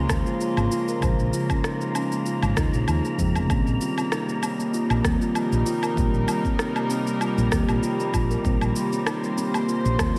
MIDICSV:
0, 0, Header, 1, 7, 480
1, 0, Start_track
1, 0, Tempo, 618557
1, 795, Time_signature, 4, 2, 24, 8
1, 7907, End_track
2, 0, Start_track
2, 0, Title_t, "Synth texture"
2, 0, Program_c, 0, 99
2, 0, Note_on_c, 0, 82, 78
2, 7907, Note_off_c, 0, 82, 0
2, 7907, End_track
3, 0, Start_track
3, 0, Title_t, "String section"
3, 0, Program_c, 1, 48
3, 0, Note_on_c, 1, 49, 66
3, 0, Note_on_c, 1, 56, 71
3, 0, Note_on_c, 1, 58, 70
3, 0, Note_on_c, 1, 65, 62
3, 2713, Note_off_c, 1, 65, 0
3, 2713, Note_on_c, 1, 48, 65
3, 2714, Note_off_c, 1, 56, 0
3, 2715, Note_off_c, 1, 49, 0
3, 2829, Note_on_c, 1, 55, 83
3, 3433, Note_on_c, 1, 63, 76
3, 3925, Note_on_c, 1, 70, 77
3, 6707, Note_on_c, 1, 72, 75
3, 6849, Note_off_c, 1, 70, 0
3, 7230, Note_on_c, 1, 65, 76
3, 7378, Note_off_c, 1, 63, 0
3, 7907, Note_off_c, 1, 48, 0
3, 7907, Note_off_c, 1, 55, 0
3, 7907, Note_off_c, 1, 58, 0
3, 7907, Note_off_c, 1, 65, 0
3, 7907, Note_off_c, 1, 72, 0
3, 7907, End_track
4, 0, Start_track
4, 0, Title_t, "Steel tongue drum"
4, 0, Program_c, 2, 114
4, 74, Note_on_c, 2, 53, 72
4, 148, Note_off_c, 2, 53, 0
4, 203, Note_on_c, 2, 65, 73
4, 304, Note_off_c, 2, 65, 0
4, 313, Note_on_c, 2, 65, 79
4, 437, Note_off_c, 2, 65, 0
4, 442, Note_on_c, 2, 58, 77
4, 548, Note_off_c, 2, 58, 0
4, 554, Note_on_c, 2, 65, 96
4, 628, Note_off_c, 2, 65, 0
4, 685, Note_on_c, 2, 70, 78
4, 784, Note_off_c, 2, 70, 0
4, 925, Note_on_c, 2, 58, 66
4, 1030, Note_off_c, 2, 58, 0
4, 1036, Note_on_c, 2, 65, 76
4, 1159, Note_off_c, 2, 65, 0
4, 1164, Note_on_c, 2, 61, 96
4, 1269, Note_off_c, 2, 61, 0
4, 1275, Note_on_c, 2, 63, 82
4, 1398, Note_off_c, 2, 63, 0
4, 1405, Note_on_c, 2, 58, 67
4, 1510, Note_off_c, 2, 58, 0
4, 1515, Note_on_c, 2, 61, 93
4, 1638, Note_off_c, 2, 61, 0
4, 1645, Note_on_c, 2, 58, 94
4, 1750, Note_off_c, 2, 58, 0
4, 1755, Note_on_c, 2, 65, 72
4, 1871, Note_off_c, 2, 65, 0
4, 1884, Note_on_c, 2, 58, 91
4, 1984, Note_off_c, 2, 58, 0
4, 1994, Note_on_c, 2, 65, 74
4, 2118, Note_off_c, 2, 65, 0
4, 2124, Note_on_c, 2, 68, 68
4, 2187, Note_off_c, 2, 68, 0
4, 2234, Note_on_c, 2, 63, 77
4, 2308, Note_off_c, 2, 63, 0
4, 2362, Note_on_c, 2, 58, 93
4, 2463, Note_off_c, 2, 58, 0
4, 2603, Note_on_c, 2, 61, 74
4, 2709, Note_off_c, 2, 61, 0
4, 2714, Note_on_c, 2, 58, 70
4, 2831, Note_off_c, 2, 58, 0
4, 2844, Note_on_c, 2, 58, 70
4, 2949, Note_off_c, 2, 58, 0
4, 2955, Note_on_c, 2, 65, 76
4, 3078, Note_off_c, 2, 65, 0
4, 3085, Note_on_c, 2, 60, 93
4, 3189, Note_off_c, 2, 60, 0
4, 3195, Note_on_c, 2, 63, 82
4, 3318, Note_off_c, 2, 63, 0
4, 3323, Note_on_c, 2, 58, 67
4, 3429, Note_off_c, 2, 58, 0
4, 3433, Note_on_c, 2, 60, 102
4, 3557, Note_off_c, 2, 60, 0
4, 3564, Note_on_c, 2, 58, 100
4, 3669, Note_off_c, 2, 58, 0
4, 3674, Note_on_c, 2, 65, 75
4, 3791, Note_off_c, 2, 65, 0
4, 3804, Note_on_c, 2, 58, 99
4, 3904, Note_off_c, 2, 58, 0
4, 3916, Note_on_c, 2, 53, 72
4, 3989, Note_off_c, 2, 53, 0
4, 4046, Note_on_c, 2, 65, 76
4, 4145, Note_off_c, 2, 65, 0
4, 4155, Note_on_c, 2, 65, 80
4, 4278, Note_off_c, 2, 65, 0
4, 4284, Note_on_c, 2, 58, 71
4, 4389, Note_off_c, 2, 58, 0
4, 4395, Note_on_c, 2, 65, 96
4, 4469, Note_off_c, 2, 65, 0
4, 4525, Note_on_c, 2, 70, 70
4, 4624, Note_off_c, 2, 70, 0
4, 4635, Note_on_c, 2, 58, 75
4, 4751, Note_off_c, 2, 58, 0
4, 4764, Note_on_c, 2, 58, 68
4, 4869, Note_off_c, 2, 58, 0
4, 4875, Note_on_c, 2, 65, 79
4, 4998, Note_off_c, 2, 65, 0
4, 5003, Note_on_c, 2, 60, 96
4, 5109, Note_off_c, 2, 60, 0
4, 5115, Note_on_c, 2, 63, 84
4, 5238, Note_off_c, 2, 63, 0
4, 5244, Note_on_c, 2, 58, 72
4, 5349, Note_off_c, 2, 58, 0
4, 5356, Note_on_c, 2, 60, 100
4, 5478, Note_off_c, 2, 60, 0
4, 5486, Note_on_c, 2, 58, 98
4, 5590, Note_off_c, 2, 58, 0
4, 5594, Note_on_c, 2, 65, 77
4, 5711, Note_off_c, 2, 65, 0
4, 5723, Note_on_c, 2, 58, 99
4, 5823, Note_off_c, 2, 58, 0
4, 5834, Note_on_c, 2, 53, 68
4, 5908, Note_off_c, 2, 53, 0
4, 5964, Note_on_c, 2, 65, 76
4, 6065, Note_off_c, 2, 65, 0
4, 6074, Note_on_c, 2, 65, 78
4, 6197, Note_off_c, 2, 65, 0
4, 6204, Note_on_c, 2, 58, 79
4, 6309, Note_off_c, 2, 58, 0
4, 6314, Note_on_c, 2, 65, 97
4, 6388, Note_off_c, 2, 65, 0
4, 6443, Note_on_c, 2, 70, 78
4, 6543, Note_off_c, 2, 70, 0
4, 6684, Note_on_c, 2, 58, 74
4, 6789, Note_off_c, 2, 58, 0
4, 6792, Note_on_c, 2, 65, 74
4, 6917, Note_off_c, 2, 65, 0
4, 6922, Note_on_c, 2, 60, 94
4, 7028, Note_off_c, 2, 60, 0
4, 7032, Note_on_c, 2, 63, 84
4, 7157, Note_off_c, 2, 63, 0
4, 7162, Note_on_c, 2, 58, 71
4, 7268, Note_off_c, 2, 58, 0
4, 7273, Note_on_c, 2, 60, 97
4, 7397, Note_off_c, 2, 60, 0
4, 7402, Note_on_c, 2, 58, 101
4, 7508, Note_off_c, 2, 58, 0
4, 7513, Note_on_c, 2, 65, 76
4, 7631, Note_off_c, 2, 65, 0
4, 7641, Note_on_c, 2, 58, 96
4, 7742, Note_off_c, 2, 58, 0
4, 7754, Note_on_c, 2, 53, 71
4, 7828, Note_off_c, 2, 53, 0
4, 7882, Note_on_c, 2, 65, 73
4, 7907, Note_off_c, 2, 65, 0
4, 7907, End_track
5, 0, Start_track
5, 0, Title_t, "Synth keys"
5, 0, Program_c, 3, 88
5, 0, Control_c, 3, 64, 127
5, 0, Note_on_c, 3, 49, 87
5, 0, Note_on_c, 3, 53, 81
5, 0, Note_on_c, 3, 56, 77
5, 0, Note_on_c, 3, 72, 90
5, 59, Note_off_c, 3, 49, 0
5, 59, Note_on_c, 3, 49, 84
5, 69, Note_off_c, 3, 53, 0
5, 69, Note_on_c, 3, 53, 72
5, 80, Note_off_c, 3, 56, 0
5, 80, Note_on_c, 3, 56, 74
5, 89, Note_off_c, 3, 72, 0
5, 89, Note_on_c, 3, 72, 86
5, 760, Note_off_c, 3, 49, 0
5, 765, Note_off_c, 3, 53, 0
5, 771, Note_off_c, 3, 56, 0
5, 776, Note_off_c, 3, 72, 0
5, 777, Note_on_c, 3, 49, 88
5, 788, Note_on_c, 3, 53, 82
5, 799, Note_on_c, 3, 56, 80
5, 808, Note_on_c, 3, 72, 94
5, 1959, Note_off_c, 3, 49, 0
5, 1965, Note_off_c, 3, 53, 0
5, 1970, Note_off_c, 3, 56, 0
5, 1975, Note_off_c, 3, 72, 0
5, 1986, Note_on_c, 3, 49, 77
5, 1992, Note_on_c, 3, 53, 66
5, 1996, Note_on_c, 3, 56, 74
5, 2002, Note_on_c, 3, 63, 87
5, 2444, Note_off_c, 3, 49, 0
5, 2447, Note_off_c, 3, 53, 0
5, 2449, Note_off_c, 3, 56, 0
5, 2452, Note_off_c, 3, 63, 0
5, 2464, Note_on_c, 3, 49, 89
5, 2471, Note_on_c, 3, 53, 83
5, 2474, Note_on_c, 3, 56, 83
5, 2480, Note_on_c, 3, 60, 98
5, 2683, Note_off_c, 3, 49, 0
5, 2687, Note_off_c, 3, 53, 0
5, 2688, Note_off_c, 3, 56, 0
5, 2691, Note_off_c, 3, 60, 0
5, 2698, Note_on_c, 3, 51, 90
5, 2708, Note_on_c, 3, 55, 74
5, 2719, Note_on_c, 3, 58, 77
5, 2726, Control_c, 3, 64, 0
5, 2729, Note_on_c, 3, 60, 97
5, 2871, Control_c, 3, 64, 127
5, 3880, Note_off_c, 3, 51, 0
5, 3885, Note_off_c, 3, 55, 0
5, 3890, Note_off_c, 3, 58, 0
5, 3895, Note_off_c, 3, 60, 0
5, 3898, Note_on_c, 3, 51, 82
5, 3909, Note_on_c, 3, 55, 74
5, 3919, Note_on_c, 3, 58, 73
5, 3930, Note_on_c, 3, 60, 88
5, 4600, Note_off_c, 3, 51, 0
5, 4606, Note_off_c, 3, 55, 0
5, 4611, Note_off_c, 3, 58, 0
5, 4616, Note_off_c, 3, 60, 0
5, 4620, Note_on_c, 3, 51, 79
5, 4631, Note_on_c, 3, 55, 81
5, 4642, Note_on_c, 3, 58, 76
5, 4652, Note_on_c, 3, 60, 92
5, 5801, Note_off_c, 3, 51, 0
5, 5806, Note_off_c, 3, 55, 0
5, 5812, Note_off_c, 3, 58, 0
5, 5817, Note_off_c, 3, 60, 0
5, 5818, Note_on_c, 3, 51, 83
5, 5829, Note_on_c, 3, 55, 72
5, 5839, Note_on_c, 3, 58, 75
5, 5849, Note_on_c, 3, 60, 90
5, 6520, Note_off_c, 3, 51, 0
5, 6526, Note_off_c, 3, 55, 0
5, 6531, Note_off_c, 3, 58, 0
5, 6536, Note_off_c, 3, 60, 0
5, 6540, Note_on_c, 3, 51, 86
5, 6550, Note_on_c, 3, 55, 78
5, 6560, Note_on_c, 3, 58, 80
5, 6571, Note_on_c, 3, 60, 96
5, 7721, Note_off_c, 3, 51, 0
5, 7726, Note_off_c, 3, 55, 0
5, 7731, Note_off_c, 3, 58, 0
5, 7736, Note_off_c, 3, 60, 0
5, 7739, Note_on_c, 3, 51, 83
5, 7751, Note_on_c, 3, 55, 75
5, 7760, Note_on_c, 3, 58, 75
5, 7771, Note_on_c, 3, 60, 86
5, 7907, Note_off_c, 3, 51, 0
5, 7907, Note_off_c, 3, 55, 0
5, 7907, Note_off_c, 3, 58, 0
5, 7907, Note_off_c, 3, 60, 0
5, 7907, End_track
6, 0, Start_track
6, 0, Title_t, "Fretless electric bass"
6, 0, Program_c, 4, 35
6, 76, Note_on_c, 4, 39, 87
6, 161, Note_off_c, 4, 39, 0
6, 444, Note_on_c, 4, 32, 90
6, 517, Note_off_c, 4, 32, 0
6, 797, Note_on_c, 4, 34, 90
6, 881, Note_off_c, 4, 34, 0
6, 923, Note_on_c, 4, 34, 78
6, 997, Note_off_c, 4, 34, 0
6, 1882, Note_on_c, 4, 32, 79
6, 1956, Note_off_c, 4, 32, 0
6, 1995, Note_on_c, 4, 39, 88
6, 2081, Note_off_c, 4, 39, 0
6, 2121, Note_on_c, 4, 34, 83
6, 2196, Note_off_c, 4, 34, 0
6, 2232, Note_on_c, 4, 39, 88
6, 2319, Note_off_c, 4, 39, 0
6, 2476, Note_on_c, 4, 41, 78
6, 2602, Note_on_c, 4, 29, 89
6, 2614, Note_off_c, 4, 41, 0
6, 2676, Note_off_c, 4, 29, 0
6, 2716, Note_on_c, 4, 34, 89
6, 2801, Note_off_c, 4, 34, 0
6, 2844, Note_on_c, 4, 34, 77
6, 2917, Note_off_c, 4, 34, 0
6, 3804, Note_on_c, 4, 34, 98
6, 3877, Note_off_c, 4, 34, 0
6, 3915, Note_on_c, 4, 39, 84
6, 4001, Note_off_c, 4, 39, 0
6, 4285, Note_on_c, 4, 34, 87
6, 4358, Note_off_c, 4, 34, 0
6, 4635, Note_on_c, 4, 34, 87
6, 4721, Note_off_c, 4, 34, 0
6, 4764, Note_on_c, 4, 34, 81
6, 4837, Note_off_c, 4, 34, 0
6, 5725, Note_on_c, 4, 34, 78
6, 5798, Note_off_c, 4, 34, 0
6, 5835, Note_on_c, 4, 39, 96
6, 5921, Note_off_c, 4, 39, 0
6, 5965, Note_on_c, 4, 34, 78
6, 6038, Note_off_c, 4, 34, 0
6, 6316, Note_on_c, 4, 34, 77
6, 6481, Note_off_c, 4, 34, 0
6, 6555, Note_on_c, 4, 34, 86
6, 6641, Note_off_c, 4, 34, 0
6, 6687, Note_on_c, 4, 34, 86
6, 6759, Note_off_c, 4, 34, 0
6, 7646, Note_on_c, 4, 34, 97
6, 7718, Note_off_c, 4, 34, 0
6, 7907, End_track
7, 0, Start_track
7, 0, Title_t, "Drums"
7, 73, Note_on_c, 9, 37, 74
7, 73, Note_on_c, 9, 77, 75
7, 76, Note_on_c, 9, 36, 100
7, 76, Note_on_c, 9, 82, 82
7, 151, Note_off_c, 9, 37, 0
7, 151, Note_off_c, 9, 77, 0
7, 153, Note_off_c, 9, 36, 0
7, 153, Note_off_c, 9, 82, 0
7, 205, Note_on_c, 9, 82, 33
7, 283, Note_off_c, 9, 82, 0
7, 316, Note_on_c, 9, 82, 45
7, 394, Note_off_c, 9, 82, 0
7, 444, Note_on_c, 9, 77, 72
7, 446, Note_on_c, 9, 82, 22
7, 522, Note_off_c, 9, 77, 0
7, 524, Note_off_c, 9, 82, 0
7, 557, Note_on_c, 9, 82, 70
7, 634, Note_off_c, 9, 82, 0
7, 685, Note_on_c, 9, 82, 32
7, 763, Note_off_c, 9, 82, 0
7, 793, Note_on_c, 9, 77, 68
7, 795, Note_on_c, 9, 82, 44
7, 796, Note_on_c, 9, 36, 106
7, 871, Note_off_c, 9, 77, 0
7, 873, Note_off_c, 9, 36, 0
7, 873, Note_off_c, 9, 82, 0
7, 926, Note_on_c, 9, 82, 22
7, 1004, Note_off_c, 9, 82, 0
7, 1036, Note_on_c, 9, 82, 80
7, 1113, Note_off_c, 9, 82, 0
7, 1162, Note_on_c, 9, 77, 70
7, 1164, Note_on_c, 9, 82, 33
7, 1165, Note_on_c, 9, 36, 59
7, 1240, Note_off_c, 9, 77, 0
7, 1242, Note_off_c, 9, 82, 0
7, 1243, Note_off_c, 9, 36, 0
7, 1274, Note_on_c, 9, 37, 76
7, 1276, Note_on_c, 9, 82, 45
7, 1351, Note_off_c, 9, 37, 0
7, 1354, Note_off_c, 9, 82, 0
7, 1405, Note_on_c, 9, 82, 22
7, 1482, Note_off_c, 9, 82, 0
7, 1514, Note_on_c, 9, 77, 70
7, 1516, Note_on_c, 9, 82, 73
7, 1591, Note_off_c, 9, 77, 0
7, 1594, Note_off_c, 9, 82, 0
7, 1645, Note_on_c, 9, 82, 32
7, 1722, Note_off_c, 9, 82, 0
7, 1754, Note_on_c, 9, 82, 45
7, 1832, Note_off_c, 9, 82, 0
7, 1882, Note_on_c, 9, 77, 75
7, 1885, Note_on_c, 9, 82, 25
7, 1960, Note_off_c, 9, 77, 0
7, 1962, Note_off_c, 9, 82, 0
7, 1993, Note_on_c, 9, 37, 75
7, 1995, Note_on_c, 9, 36, 100
7, 1996, Note_on_c, 9, 82, 79
7, 2071, Note_off_c, 9, 37, 0
7, 2073, Note_off_c, 9, 36, 0
7, 2073, Note_off_c, 9, 82, 0
7, 2124, Note_on_c, 9, 82, 35
7, 2202, Note_off_c, 9, 82, 0
7, 2233, Note_on_c, 9, 77, 77
7, 2235, Note_on_c, 9, 82, 44
7, 2310, Note_off_c, 9, 77, 0
7, 2313, Note_off_c, 9, 82, 0
7, 2365, Note_on_c, 9, 82, 20
7, 2443, Note_off_c, 9, 82, 0
7, 2475, Note_on_c, 9, 36, 59
7, 2476, Note_on_c, 9, 82, 73
7, 2553, Note_off_c, 9, 36, 0
7, 2554, Note_off_c, 9, 82, 0
7, 2604, Note_on_c, 9, 77, 69
7, 2606, Note_on_c, 9, 82, 34
7, 2681, Note_off_c, 9, 77, 0
7, 2684, Note_off_c, 9, 82, 0
7, 2715, Note_on_c, 9, 36, 116
7, 2715, Note_on_c, 9, 77, 76
7, 2717, Note_on_c, 9, 82, 44
7, 2793, Note_off_c, 9, 36, 0
7, 2793, Note_off_c, 9, 77, 0
7, 2795, Note_off_c, 9, 82, 0
7, 2848, Note_on_c, 9, 82, 20
7, 2926, Note_off_c, 9, 82, 0
7, 2958, Note_on_c, 9, 82, 70
7, 3036, Note_off_c, 9, 82, 0
7, 3086, Note_on_c, 9, 77, 68
7, 3088, Note_on_c, 9, 82, 31
7, 3164, Note_off_c, 9, 77, 0
7, 3166, Note_off_c, 9, 82, 0
7, 3196, Note_on_c, 9, 37, 72
7, 3199, Note_on_c, 9, 82, 44
7, 3274, Note_off_c, 9, 37, 0
7, 3276, Note_off_c, 9, 82, 0
7, 3328, Note_on_c, 9, 82, 21
7, 3405, Note_off_c, 9, 82, 0
7, 3435, Note_on_c, 9, 77, 74
7, 3438, Note_on_c, 9, 82, 74
7, 3513, Note_off_c, 9, 77, 0
7, 3515, Note_off_c, 9, 82, 0
7, 3569, Note_on_c, 9, 82, 31
7, 3646, Note_off_c, 9, 82, 0
7, 3678, Note_on_c, 9, 82, 43
7, 3755, Note_off_c, 9, 82, 0
7, 3804, Note_on_c, 9, 77, 81
7, 3807, Note_on_c, 9, 82, 23
7, 3882, Note_off_c, 9, 77, 0
7, 3884, Note_off_c, 9, 82, 0
7, 3915, Note_on_c, 9, 36, 102
7, 3915, Note_on_c, 9, 37, 75
7, 3918, Note_on_c, 9, 82, 74
7, 3992, Note_off_c, 9, 36, 0
7, 3993, Note_off_c, 9, 37, 0
7, 3995, Note_off_c, 9, 82, 0
7, 4047, Note_on_c, 9, 82, 31
7, 4124, Note_off_c, 9, 82, 0
7, 4154, Note_on_c, 9, 77, 76
7, 4156, Note_on_c, 9, 82, 44
7, 4232, Note_off_c, 9, 77, 0
7, 4234, Note_off_c, 9, 82, 0
7, 4286, Note_on_c, 9, 82, 22
7, 4364, Note_off_c, 9, 82, 0
7, 4396, Note_on_c, 9, 82, 77
7, 4473, Note_off_c, 9, 82, 0
7, 4523, Note_on_c, 9, 77, 76
7, 4525, Note_on_c, 9, 82, 34
7, 4600, Note_off_c, 9, 77, 0
7, 4603, Note_off_c, 9, 82, 0
7, 4635, Note_on_c, 9, 36, 111
7, 4638, Note_on_c, 9, 82, 43
7, 4712, Note_off_c, 9, 36, 0
7, 4715, Note_off_c, 9, 82, 0
7, 4766, Note_on_c, 9, 82, 19
7, 4844, Note_off_c, 9, 82, 0
7, 4873, Note_on_c, 9, 77, 80
7, 4876, Note_on_c, 9, 82, 66
7, 4951, Note_off_c, 9, 77, 0
7, 4953, Note_off_c, 9, 82, 0
7, 5005, Note_on_c, 9, 36, 56
7, 5007, Note_on_c, 9, 82, 28
7, 5082, Note_off_c, 9, 36, 0
7, 5084, Note_off_c, 9, 82, 0
7, 5114, Note_on_c, 9, 37, 75
7, 5117, Note_on_c, 9, 82, 44
7, 5192, Note_off_c, 9, 37, 0
7, 5194, Note_off_c, 9, 82, 0
7, 5245, Note_on_c, 9, 77, 77
7, 5247, Note_on_c, 9, 82, 22
7, 5322, Note_off_c, 9, 77, 0
7, 5325, Note_off_c, 9, 82, 0
7, 5357, Note_on_c, 9, 82, 69
7, 5435, Note_off_c, 9, 82, 0
7, 5487, Note_on_c, 9, 82, 33
7, 5564, Note_off_c, 9, 82, 0
7, 5595, Note_on_c, 9, 77, 75
7, 5597, Note_on_c, 9, 82, 40
7, 5672, Note_off_c, 9, 77, 0
7, 5675, Note_off_c, 9, 82, 0
7, 5727, Note_on_c, 9, 82, 23
7, 5804, Note_off_c, 9, 82, 0
7, 5835, Note_on_c, 9, 36, 98
7, 5835, Note_on_c, 9, 37, 76
7, 5837, Note_on_c, 9, 82, 74
7, 5912, Note_off_c, 9, 37, 0
7, 5913, Note_off_c, 9, 36, 0
7, 5915, Note_off_c, 9, 82, 0
7, 5964, Note_on_c, 9, 77, 75
7, 5967, Note_on_c, 9, 82, 30
7, 6042, Note_off_c, 9, 77, 0
7, 6044, Note_off_c, 9, 82, 0
7, 6077, Note_on_c, 9, 82, 43
7, 6154, Note_off_c, 9, 82, 0
7, 6207, Note_on_c, 9, 82, 21
7, 6285, Note_off_c, 9, 82, 0
7, 6315, Note_on_c, 9, 36, 57
7, 6315, Note_on_c, 9, 77, 74
7, 6317, Note_on_c, 9, 82, 70
7, 6392, Note_off_c, 9, 77, 0
7, 6393, Note_off_c, 9, 36, 0
7, 6395, Note_off_c, 9, 82, 0
7, 6448, Note_on_c, 9, 82, 29
7, 6526, Note_off_c, 9, 82, 0
7, 6555, Note_on_c, 9, 36, 100
7, 6558, Note_on_c, 9, 82, 42
7, 6633, Note_off_c, 9, 36, 0
7, 6635, Note_off_c, 9, 82, 0
7, 6685, Note_on_c, 9, 77, 77
7, 6687, Note_on_c, 9, 82, 21
7, 6762, Note_off_c, 9, 77, 0
7, 6765, Note_off_c, 9, 82, 0
7, 6798, Note_on_c, 9, 82, 70
7, 6875, Note_off_c, 9, 82, 0
7, 6927, Note_on_c, 9, 82, 31
7, 7005, Note_off_c, 9, 82, 0
7, 7035, Note_on_c, 9, 37, 77
7, 7035, Note_on_c, 9, 77, 88
7, 7037, Note_on_c, 9, 82, 44
7, 7112, Note_off_c, 9, 37, 0
7, 7112, Note_off_c, 9, 77, 0
7, 7115, Note_off_c, 9, 82, 0
7, 7168, Note_on_c, 9, 82, 21
7, 7245, Note_off_c, 9, 82, 0
7, 7278, Note_on_c, 9, 82, 70
7, 7356, Note_off_c, 9, 82, 0
7, 7406, Note_on_c, 9, 77, 79
7, 7408, Note_on_c, 9, 82, 33
7, 7483, Note_off_c, 9, 77, 0
7, 7486, Note_off_c, 9, 82, 0
7, 7517, Note_on_c, 9, 82, 38
7, 7595, Note_off_c, 9, 82, 0
7, 7647, Note_on_c, 9, 82, 23
7, 7724, Note_off_c, 9, 82, 0
7, 7753, Note_on_c, 9, 37, 77
7, 7753, Note_on_c, 9, 77, 83
7, 7755, Note_on_c, 9, 36, 98
7, 7756, Note_on_c, 9, 82, 73
7, 7831, Note_off_c, 9, 37, 0
7, 7831, Note_off_c, 9, 77, 0
7, 7832, Note_off_c, 9, 36, 0
7, 7833, Note_off_c, 9, 82, 0
7, 7907, End_track
0, 0, End_of_file